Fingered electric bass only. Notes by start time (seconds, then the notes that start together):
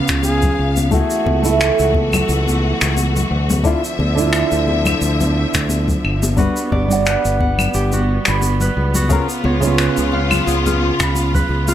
0.09 C#2
0.59 C#2
1.26 C#2
1.79 C#2
2.29 C#2
2.82 C#2
3.31 D2
3.99 D2
4.52 D2
5.01 D2
5.55 D2
6.04 G1
6.72 G1
7.25 G1
7.75 G1
8.28 G1
8.77 C#2
9.45 C#2
9.98 C#2
10.47 C#2
11.00 C#2
11.49 C#2